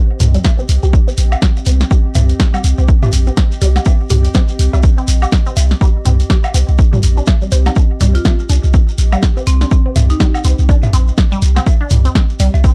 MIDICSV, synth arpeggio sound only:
0, 0, Header, 1, 2, 480
1, 0, Start_track
1, 0, Key_signature, -3, "minor"
1, 0, Tempo, 487805
1, 1878, Time_signature, 4, 2, 24, 8
1, 12539, End_track
2, 0, Start_track
2, 0, Title_t, "Synth arpeggio sound"
2, 0, Program_c, 0, 84
2, 339, Note_on_c, 0, 55, 98
2, 375, Note_off_c, 0, 55, 0
2, 578, Note_on_c, 0, 60, 78
2, 633, Note_off_c, 0, 60, 0
2, 818, Note_on_c, 0, 67, 71
2, 854, Note_off_c, 0, 67, 0
2, 1058, Note_on_c, 0, 60, 75
2, 1080, Note_off_c, 0, 60, 0
2, 1398, Note_on_c, 0, 55, 97
2, 1449, Note_off_c, 0, 55, 0
2, 1639, Note_on_c, 0, 60, 79
2, 1714, Note_off_c, 0, 60, 0
2, 1879, Note_on_c, 0, 67, 80
2, 1929, Note_off_c, 0, 67, 0
2, 2118, Note_on_c, 0, 60, 74
2, 2148, Note_off_c, 0, 60, 0
2, 2498, Note_on_c, 0, 55, 104
2, 2534, Note_off_c, 0, 55, 0
2, 2737, Note_on_c, 0, 60, 76
2, 2792, Note_off_c, 0, 60, 0
2, 2977, Note_on_c, 0, 67, 77
2, 3014, Note_off_c, 0, 67, 0
2, 3219, Note_on_c, 0, 60, 73
2, 3240, Note_off_c, 0, 60, 0
2, 3557, Note_on_c, 0, 55, 100
2, 3609, Note_off_c, 0, 55, 0
2, 3798, Note_on_c, 0, 60, 80
2, 3874, Note_off_c, 0, 60, 0
2, 4036, Note_on_c, 0, 67, 73
2, 4088, Note_off_c, 0, 67, 0
2, 4277, Note_on_c, 0, 60, 81
2, 4308, Note_off_c, 0, 60, 0
2, 4657, Note_on_c, 0, 55, 100
2, 4694, Note_off_c, 0, 55, 0
2, 4897, Note_on_c, 0, 60, 78
2, 4952, Note_off_c, 0, 60, 0
2, 5138, Note_on_c, 0, 67, 70
2, 5174, Note_off_c, 0, 67, 0
2, 5377, Note_on_c, 0, 60, 75
2, 5399, Note_off_c, 0, 60, 0
2, 5717, Note_on_c, 0, 55, 101
2, 5768, Note_off_c, 0, 55, 0
2, 5958, Note_on_c, 0, 60, 76
2, 6034, Note_off_c, 0, 60, 0
2, 6198, Note_on_c, 0, 67, 86
2, 6249, Note_off_c, 0, 67, 0
2, 6438, Note_on_c, 0, 60, 73
2, 6469, Note_off_c, 0, 60, 0
2, 6818, Note_on_c, 0, 55, 103
2, 6854, Note_off_c, 0, 55, 0
2, 7059, Note_on_c, 0, 62, 72
2, 7113, Note_off_c, 0, 62, 0
2, 7298, Note_on_c, 0, 55, 72
2, 7334, Note_off_c, 0, 55, 0
2, 7398, Note_on_c, 0, 72, 75
2, 7449, Note_off_c, 0, 72, 0
2, 7539, Note_on_c, 0, 63, 73
2, 7560, Note_off_c, 0, 63, 0
2, 7879, Note_on_c, 0, 55, 95
2, 7929, Note_off_c, 0, 55, 0
2, 8119, Note_on_c, 0, 60, 84
2, 8195, Note_off_c, 0, 60, 0
2, 8358, Note_on_c, 0, 62, 76
2, 8409, Note_off_c, 0, 62, 0
2, 8599, Note_on_c, 0, 60, 78
2, 8629, Note_off_c, 0, 60, 0
2, 8978, Note_on_c, 0, 55, 96
2, 9014, Note_off_c, 0, 55, 0
2, 9219, Note_on_c, 0, 60, 74
2, 9273, Note_off_c, 0, 60, 0
2, 9459, Note_on_c, 0, 62, 76
2, 9495, Note_off_c, 0, 62, 0
2, 9699, Note_on_c, 0, 60, 72
2, 9720, Note_off_c, 0, 60, 0
2, 10039, Note_on_c, 0, 55, 104
2, 10089, Note_off_c, 0, 55, 0
2, 10280, Note_on_c, 0, 60, 74
2, 10355, Note_off_c, 0, 60, 0
2, 10519, Note_on_c, 0, 62, 81
2, 10569, Note_off_c, 0, 62, 0
2, 10759, Note_on_c, 0, 60, 72
2, 10789, Note_off_c, 0, 60, 0
2, 11139, Note_on_c, 0, 55, 97
2, 11175, Note_off_c, 0, 55, 0
2, 11378, Note_on_c, 0, 60, 75
2, 11432, Note_off_c, 0, 60, 0
2, 11618, Note_on_c, 0, 62, 74
2, 11654, Note_off_c, 0, 62, 0
2, 11859, Note_on_c, 0, 60, 75
2, 11880, Note_off_c, 0, 60, 0
2, 12198, Note_on_c, 0, 55, 100
2, 12249, Note_off_c, 0, 55, 0
2, 12439, Note_on_c, 0, 60, 84
2, 12514, Note_off_c, 0, 60, 0
2, 12539, End_track
0, 0, End_of_file